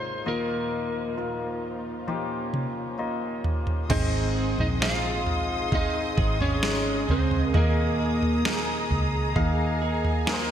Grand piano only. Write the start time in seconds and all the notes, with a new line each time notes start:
Already playing: G#1 D#2 G#3 D#4 F4 D#5
0.26 D#2 A#2 A#3 D#4 F4 D#5
1.17 A#3 D#4 F4 A#4
2.07 A#3 D#4 F4 G4
2.98 A#3 D#4 F4 D#5
3.90 G#2 D#3 C4 D#4 G#4 D#5
4.81 C4 D#4 G#4 F5
5.72 C4 D#4 G#4 F5
6.62 G#3 D#4 G#4 D#5
7.54 A#2 A#3 D#4 G#4 D#5
8.45 A#3 D#4 G#4 A#4
9.36 A#3 D#4 G#4 F5
10.26 A#3 D#4 G#4 A#4
10.33 C5